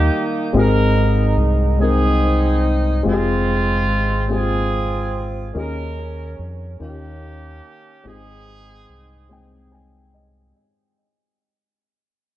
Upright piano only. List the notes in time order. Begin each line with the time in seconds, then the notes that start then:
Already playing: D#3 G3 A#3 D#4 G4
0.53 G#2 G#3 C4 D#4 G#4
1.78 G#3 C4 D#4
1.82 A#4
3.03 G#3 C4 F4 G4
3.13 G#4
4.28 G#3 C4 F4 G#4
5.54 D#3 A#3 C#4 D#4 G#4
6.79 D#3 A#3 C#4 D#4 F4
6.88 G4
8.04 G#2 G#3 C4 D#4 G#4
9.29 G#3 C4 D#4 G5
9.72 G#5
10.14 D#5